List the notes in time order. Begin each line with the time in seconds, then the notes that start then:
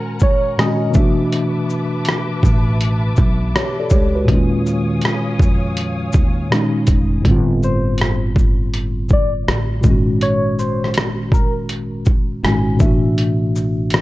Already playing: A#2 D#3 G#3 C#4 F#4 A#4 F#5 G#5 A#5
0.20 C#5, kick, shaker
0.57 A#2 D#3 G#3 C#4 D#5 G#5, cross-stick, closed hi-hat
0.62 F#4
0.91 B2 E3, shaker
0.95 A3 D4 B4 E5 A5 D6, kick
1.00 F#4
1.32 closed hi-hat
1.70 shaker
2.05 cross-stick, closed hi-hat
2.43 A1, kick, shaker
2.81 closed hi-hat
3.16 B1, kick, shaker
3.56 G4 C#5, cross-stick, closed hi-hat
3.80 A4 D5
3.90 C#2 G4 C#5, kick, shaker
4.15 F#4 B4
4.24 A#2 D#3 C#5 F5 G#5 D#6, kick, closed hi-hat
4.29 D#2 G#3 C#4
4.34 F4
4.66 shaker
5.01 cross-stick, closed hi-hat
5.39 F2, kick, shaker
5.77 closed hi-hat
6.12 D#2, kick, shaker
6.49 A#2 D#3 G#3 C#4, cross-stick, closed hi-hat
6.54 D#4
6.87 F1, kick, closed hi-hat, shaker
7.22 G1 A2 D3, kick, closed hi-hat
7.27 G3 C4
7.31 F4
7.63 C5, shaker
7.98 cross-stick, closed hi-hat
8.36 kick, shaker
8.74 closed hi-hat
9.09 kick, shaker
9.13 D5
9.48 A1, cross-stick, closed hi-hat
9.81 G#1 A#2 D#3, kick, shaker
9.86 G#3 C#4
9.90 F#4
10.21 C#5, closed hi-hat
10.59 C5, shaker
10.84 cross-stick
10.94 cross-stick, closed hi-hat
11.32 A#4, kick, shaker
11.69 closed hi-hat
12.05 kick, shaker
12.43 G#1 A#2 D#3 G#3 C#4 G#5, cross-stick, closed hi-hat
12.48 F#4
12.77 B2 E3, kick, shaker
12.81 A1 A3 D4 E5
12.86 F#4
13.18 closed hi-hat
13.56 shaker
13.90 cross-stick, closed hi-hat